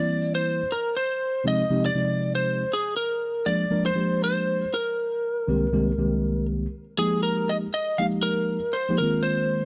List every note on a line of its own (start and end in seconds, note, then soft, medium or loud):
0.00 0.61 E3 medium
0.00 0.61 G3 medium
0.00 0.61 A#3 soft
0.00 0.61 C4 medium
0.00 0.61 E4 medium
0.00 0.35 D5 medium
0.35 0.72 C5 medium
0.72 0.95 A#4 medium
0.97 1.47 C5 medium
1.44 1.62 C3 medium
1.44 1.62 F3 medium
1.44 1.62 G#3 medium
1.44 1.62 C4 medium
1.44 1.63 D#4 medium
1.44 1.63 G4 medium
1.44 1.85 D#5 medium
1.69 1.87 C3 medium
1.69 1.88 F3 medium
1.69 1.88 G#3 medium
1.69 1.88 C4 medium
1.69 1.88 D#4 medium
1.69 1.88 G4 medium
1.86 2.32 D5 medium
1.95 2.62 C3 medium
1.95 2.62 F3 medium
1.95 2.62 G#3 medium
1.95 2.63 C4 medium
1.95 2.63 D#4 medium
1.95 2.63 G4 medium
2.35 2.73 C5 medium
2.73 2.96 G#4 medium
2.97 3.48 A#4 medium
3.46 3.64 F3 medium
3.46 3.64 G#3 medium
3.46 3.64 A#3 medium
3.46 3.64 D4 medium
3.46 3.65 G#4 medium
3.46 3.83 D5 medium
3.70 3.89 F3 medium
3.70 3.89 G#3 medium
3.70 3.89 A#3 medium
3.70 3.89 D4 medium
3.70 3.89 A#4 medium
3.86 4.23 C5 medium
3.95 4.63 F3 medium
3.95 4.63 G#3 medium
3.95 4.63 A#3 soft
3.95 4.63 D4 medium
3.95 4.64 G4 medium
4.24 4.75 C5 medium
4.74 6.46 A#4 medium
5.47 5.65 C2 medium
5.47 5.65 D#3 medium
5.47 5.66 G#3 medium
5.47 5.66 A#3 medium
5.47 5.66 C4 medium
5.47 5.66 G4 medium
5.73 5.90 C2 medium
5.73 5.90 D#3 medium
5.73 5.90 G#3 medium
5.73 5.91 A#3 medium
5.73 5.91 C4 medium
5.73 5.91 G4 medium
5.98 6.65 C2 medium
5.98 6.65 D#3 medium
5.98 6.65 G#3 medium
5.98 6.65 A#3 medium
5.98 6.66 C4 medium
5.98 6.66 G4 medium
6.98 7.65 F3 medium
6.98 7.65 G#3 medium
6.98 7.66 A#3 medium
6.98 7.66 D#4 medium
6.98 7.66 G4 medium
6.98 7.23 G#4 medium
7.23 7.50 A#4 medium
7.49 7.56 D#5 medium
7.74 8.00 D#5 medium
7.98 8.57 F3 medium
7.98 8.58 G#3 medium
7.98 8.58 A#3 medium
7.98 8.58 D#4 medium
7.98 8.58 G4 medium
7.98 8.05 F5 medium
8.23 8.76 A#4 medium
8.73 8.97 C5 medium
8.89 8.96 F3 medium
8.89 8.96 G#3 medium
8.89 8.97 A#3 medium
8.89 8.97 D#4 medium
8.89 8.97 G4 medium
8.98 9.65 D#3 medium
8.98 9.65 G#3 medium
8.98 9.65 A#3 medium
8.98 9.65 C4 medium
8.98 9.65 F4 medium
8.98 9.23 A#4 medium
9.23 9.65 C5 medium